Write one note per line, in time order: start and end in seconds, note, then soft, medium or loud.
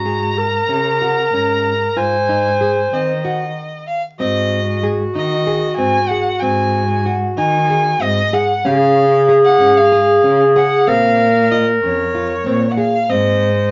0.00 0.65 G#2 medium
0.00 0.39 F#4 medium
0.00 1.98 A#5 loud
0.06 0.45 G#4 medium
0.38 1.99 A#4 medium
0.69 1.29 C#3 medium
0.69 0.89 C#4 medium
1.01 1.21 F#4 medium
1.33 1.93 G#2 medium
1.33 1.72 C#4 medium
1.97 2.89 G#2 medium
1.97 2.16 F4 medium
1.97 3.56 C5 medium
1.97 2.95 G#5 medium
2.29 2.48 D#4 medium
2.61 2.80 G#4 medium
2.93 3.52 D#3 medium
2.93 3.12 C4 medium
2.93 3.87 D#5 medium
3.25 3.44 F#4 medium
3.87 4.02 F5 medium
4.20 5.11 G#2 medium
4.20 4.59 C4 medium
4.20 8.34 F#4 medium
4.20 4.79 D#5 medium
4.83 5.03 G#4 medium
5.15 5.75 D#3 medium
5.15 5.35 D#4 medium
5.15 5.75 D#5 medium
5.47 5.67 G#4 medium
5.77 6.09 G#2 medium
5.77 5.98 C4 medium
5.77 6.10 G#5 loud
6.08 6.30 G#4 medium
6.08 6.41 F#5 medium
6.40 7.34 G#2 loud
6.40 6.82 C4 medium
6.40 7.05 G#5 medium
7.06 7.25 F#4 medium
7.38 7.98 D#3 medium
7.38 7.57 D#4 medium
7.38 8.03 G#5 loud
7.70 7.90 G#4 medium
8.01 8.31 G#2 loud
8.01 8.21 C4 medium
8.01 8.35 D#5 loud
8.33 8.53 G#4 medium
8.33 8.67 F#5 medium
8.65 9.57 C#3 loud
8.65 9.04 C#4 medium
8.65 10.89 G#4 medium
8.65 9.29 F5 loud
9.29 9.48 G#4 medium
9.45 9.78 F#5 loud
9.60 10.20 G#2 medium
9.60 9.80 C#4 medium
9.77 10.40 F5 loud
9.92 10.12 G#4 medium
10.24 10.53 C#3 medium
10.24 10.44 C#4 medium
10.56 10.75 G#4 medium
10.56 10.89 F#5 loud
10.87 11.79 A#2 loud
10.87 11.27 C4 medium
10.87 12.78 A#4 loud
10.87 11.51 F5 loud
11.51 11.71 F4 medium
11.51 11.65 D#5 medium
11.83 12.43 F2 medium
11.83 12.03 C#4 medium
11.83 12.73 C#5 medium
12.15 12.34 F4 medium
12.46 12.76 A#2 medium
12.46 12.66 C4 medium
12.72 12.79 F#5 medium
12.77 12.97 G#4 medium
12.77 13.11 F5 medium
13.09 13.71 G#2 loud
13.09 13.49 C4 medium
13.09 13.71 C5 medium
13.09 13.71 D#5 medium